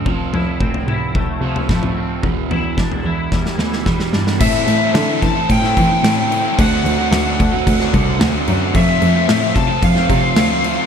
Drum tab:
CC |----------------|----------------|x-x-x-x-x-x-x-x-|x-x-x-x-x-x-x-x-|
SD |------------o---|----o---oooooooo|----o-o--o--o---|----o----o--o---|
T2 |------o-----oo--|----------------|----------------|----------------|
FT |o-o--o--o--o-o--|o-o--o----------|----------------|----------------|
BD |o---o---o---o---|o---o---o---o---|o-----o-o-o-----|o-----o-o-o-----|

CC |x-x-x-x-x-x-x-x-|
SD |----o-o--o--o---|
T2 |----------------|
FT |----------------|
BD |o-----o-o-o-----|